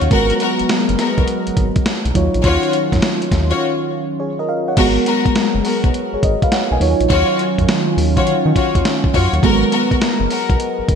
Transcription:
0.01 D#2, closed hi-hat
0.10 G#1 F#3 G#3 B3 F#4 A#4, kick, closed hi-hat
0.30 closed hi-hat
0.40 B3 F#4 A#4, closed hi-hat
0.59 F#1, closed hi-hat
0.69 snare, closed hi-hat
0.89 F#1, closed hi-hat
0.98 B3 F#4 A#4, snare, closed hi-hat
1.18 B1, kick, closed hi-hat
1.28 closed hi-hat
1.47 G#1, closed hi-hat
1.57 G#1, kick, closed hi-hat
1.76 kick, closed hi-hat
1.86 snare, closed hi-hat
2.05 B1, closed hi-hat
2.14 D#2 D#3 F#3 C#4 D#4 F4 C#5, kick, closed hi-hat
2.34 A#1, closed hi-hat
2.44 D#2 F4 F#4 C#5, kick, closed hi-hat
2.63 closed hi-hat
2.73 closed hi-hat
2.92 F#2, kick, snare, closed hi-hat
3.02 snare, closed hi-hat
3.22 closed hi-hat
3.31 D#2, kick, snare, closed hi-hat
3.50 F4 F#4 C#5, closed hi-hat
4.20 G#4 C#5
4.39 A#4 D#5
4.49 A#4 F5
4.68 C#5 F#5
4.77 G#1 F#3 G#3 B3 F#4 G#4 A#4, kick, closed hi-hat, crash
4.86 A#4
5.06 B3 F#4 A#4, closed hi-hat
5.26 F#1, kick, closed hi-hat
5.35 snare, closed hi-hat
5.55 F#1
5.64 B3 F#4 A#4, open hi-hat
5.84 B1, kick, closed hi-hat
5.94 closed hi-hat
6.13 G#1 G#4 C#5
6.23 G#1 A#4 D#5, kick, closed hi-hat
6.42 B4 F5, kick, closed hi-hat
6.52 C#5 F#5, snare, closed hi-hat
6.71 B1 D#5 G#5
6.80 D#2 D#3 F#3 C#4 D#4 F4 C#5, open hi-hat
7.00 A#1, closed hi-hat
7.10 D#2 F4 F#4 C#5, kick, closed hi-hat
7.39 closed hi-hat
7.58 F#2, kick, closed hi-hat
7.68 snare, closed hi-hat
7.97 D#2, open hi-hat
8.16 F4 F#4 C#5, kick, closed hi-hat
8.27 D#3, closed hi-hat
8.46 D#3
8.55 F4 F#4 C#5, kick, closed hi-hat
8.75 D#2, kick, closed hi-hat
8.85 snare, closed hi-hat
9.04 kick
9.13 F#2 F4 F#4 C#5, kick, open hi-hat
9.33 D#2, closed hi-hat
9.42 G#1 G#3 B3 F#4 A4 A#4, kick, closed hi-hat
9.51 A#4
9.72 B3 F#4 A#4, closed hi-hat
9.91 F#1, kick, closed hi-hat
10.01 snare, closed hi-hat
10.20 F#1
10.30 B3 F#4 A#4, open hi-hat
10.50 B1, kick, closed hi-hat
10.60 closed hi-hat
10.79 G#1
10.88 G#1, kick, closed hi-hat

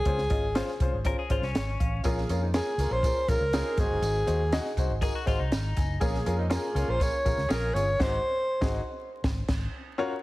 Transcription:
Already playing: G#4
0.05 C#2 C#3 C#4 F4 G#4 C5, kick, closed hi-hat
0.18 snare
0.30 G#1 C#4 F4 G#4 D#5, kick, closed hi-hat
0.55 C#4 F4 G#4 C5, snare, closed hi-hat
0.68 snare
0.80 C2 C#4 F4 G#4 C5, kick, closed hi-hat
0.93 G#1
1.05 C#4 F4 G#4 A#4 C5, kick, closed hi-hat
1.19 G#4
1.30 G#1 C#4 F4 G#4 C5, kick, closed hi-hat
1.42 C2 C#4, snare
1.55 G#1 C#5, snare, closed hi-hat
1.80 A1 F5, kick, closed hi-hat
2.03 A#1 A#2 C#4 F4 G#4 A#4, kick, closed hi-hat, tambourine
2.17 snare
2.29 F2 C#4 F4 G#4 A#4, closed hi-hat, tambourine
2.42 G#3 C4 D#4
2.54 A#3 C#4 F4 G#4 A#4, snare, closed hi-hat, tambourine
2.78 C#2 A#3 C#4 F4 G#4 A#4, closed hi-hat, tambourine
2.90 A#1 C5
3.03 C#4 F4 G#4 A#4, kick, closed hi-hat, tambourine
3.28 A#1 C#4 F4 G#4 A#4, kick, closed hi-hat, tambourine
3.40 C#2
3.53 C4 C#4 D#4 F4 G#4 A#4, snare, closed hi-hat, tambourine
3.77 G#1 G#2 D#4 F#4 G#4 C5, kick, closed hi-hat, tambourine
3.90 F#1
4.02 G#1, closed hi-hat, tambourine
4.26 D#2 D#4 F#4 G#4 C5, closed hi-hat, tambourine
4.52 D#4 F#4 G#4 D#5, snare, closed hi-hat, tambourine
4.65 snare
4.77 C2 D#4 F#4 G#4 C5, kick, closed hi-hat, tambourine
4.89 G#1
5.01 D#4 F#4 G#4 A#4, kick, closed hi-hat, tambourine
5.15 F#4
5.26 G#1 D#4 F4 F#4 G#4 C5, kick, closed hi-hat, tambourine
5.39 C2 D#4
5.52 G#1 A#5, snare, closed hi-hat, tambourine
5.76 F#1 G#5, kick, closed hi-hat, tambourine
6.00 A#1 A#2 C#4 F4 G#4 A#4, kick, closed hi-hat, tambourine
6.14 snare
6.26 F2 C#4 F4 G#4 A#4, closed hi-hat, tambourine
6.38 G#3 C4 D#4
6.49 A#3 C#4 F4 G#4 A#4, snare, closed hi-hat, tambourine
6.54 G#4
6.74 C#2 A#3 C#4 F4 G#4 A#4, closed hi-hat, tambourine
6.88 A#1 C5
7.00 C#4 F4 G#4 A#4 C#5, kick, closed hi-hat, tambourine
7.25 A#1 C#4 F4 G#4 A#4, kick, closed hi-hat, tambourine
7.37 C#2, snare
7.48 A#1 C#4 F4 G#4 A#4, snare, closed hi-hat, tambourine
7.74 G1 C#4 F4 G#4 C#5, closed hi-hat, tambourine
7.99 G#1 G#2 D#4 F#4 G#4 C5, kick, snare, crash
8.61 G#1 D#4 F#4 G#4 D#5, kick, snare
9.24 G#1, kick, snare
9.48 G#1, kick, snare, crash
9.98 C#4 F4 F#4 A#4 C#5

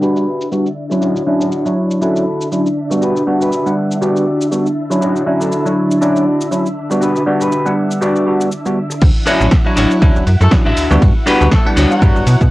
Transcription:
Already playing: D4 E5
0.01 G3 B3 D4 F#4 G4 B4, cabasa
0.16 cabasa
0.41 cabasa
0.52 G3 B3 D4 F#4, cabasa
0.66 cabasa
0.90 F#3 C#4 D4 E4, muted clean electric guitar stroke, cabasa
1.01 D4 E4 F#4 C#5 E5, cabasa
1.16 cabasa
1.26 F#3 C#4 D4 E4
1.40 D4 E4 F#4 C#5, cabasa
1.52 cabasa
1.66 F#3 D4 E4 C#5, cabasa
1.91 cabasa
2.01 F#3 C#4 D4 E4 F#4 A4, cabasa
2.16 cabasa
2.41 cabasa
2.52 F#3 C#4 D4 E4, cabasa
2.66 cabasa
2.90 G3 B3 D4 F#4, muted clean electric guitar stroke, cabasa
3.01 F#4 G4 B4, cabasa
3.16 cabasa
3.26 G3 B3 D4 F#4
3.40 F#4 G4 B4, cabasa
3.52 cabasa
3.66 G3 B3 D4 F#5, cabasa
3.91 cabasa
4.01 G3 B3 D4 F#4 G4 D5, cabasa
4.16 cabasa
4.41 cabasa
4.51 G3 B3 D4 F#4, cabasa
4.66 cabasa
4.90 F#3 C#4 D4 E4, muted clean electric guitar stroke, cabasa
5.01 D4 E4 F#4 C#5, cabasa
5.16 cabasa
5.26 F#3 C#4 D4 E4
5.40 D4 E4 F#4 A4, cabasa
5.52 cabasa
5.65 F#3 D4 E4 C#5, cabasa
5.91 cabasa
6.01 F#3 C#4 D4 E4 F#4 D5, cabasa
6.16 cabasa
6.41 cabasa
6.51 F#3 C#4 D4 E4, cabasa
6.66 cabasa
6.90 G3 B3 D4 F#4, muted clean electric guitar stroke, cabasa
7.01 F#4 G4 B4, cabasa
7.16 cabasa
7.26 G3 B3 D4 F#4
7.40 F#4 G4 B4, cabasa
7.52 cabasa
7.65 G3 B3 D4 F#5, cabasa
7.91 cabasa
8.01 G3 B3 D4 F#4 G4 D5, cabasa
8.16 cabasa
8.26 G3 B3 D4 F#4
8.41 cabasa
8.52 cabasa
8.66 G3 B3 D4 F#4, cabasa
8.90 muted clean electric guitar stroke, cabasa
9.02 D2 E4 F#5, kick, ride, crash, cabasa
9.26 F#3 C#4 D4 E4 F#4 C#5, cross-stick, open hi-hat, cabasa
9.41 A1, cabasa
9.51 kick, snare, ride, cabasa
9.65 F#3 D4 E4 C#5, muted clean electric guitar stroke
9.76 A1 D4 E4 F#4 C#5, open hi-hat, cabasa
9.91 cabasa
10.01 D2 F#3 C#4 D4 E4, muted clean electric guitar stroke, kick, ride, cabasa
10.16 D1, cabasa
10.27 F#2, open hi-hat, cabasa
10.41 F#2 A3 A4, cabasa
10.51 F#3 C#4 D4 E4, kick, snare, ride, cabasa
10.65 A1 D4 E4 F#4 E5
10.77 D2, open hi-hat, cabasa
10.91 D2 G3 B3 D4 F#4, cabasa
11.02 G2, kick, ride, cabasa
11.26 G3 B3 D4 F#4 G4 B4, cross-stick, open hi-hat, cabasa
11.41 D2, cabasa
11.51 A3 A4, kick, snare, ride, cabasa
11.65 G3 B3 D4 F#5, muted clean electric guitar stroke
11.76 D2 D4 F#4 G4 C#5, open hi-hat, cabasa
11.91 F#3 F#4, cabasa
12.01 G2 G3 B3 D4 F#4, muted clean electric guitar stroke, kick, ride, cabasa
12.16 G1, cabasa
12.27 B2, open hi-hat, cabasa
12.41 B2, kick, cabasa

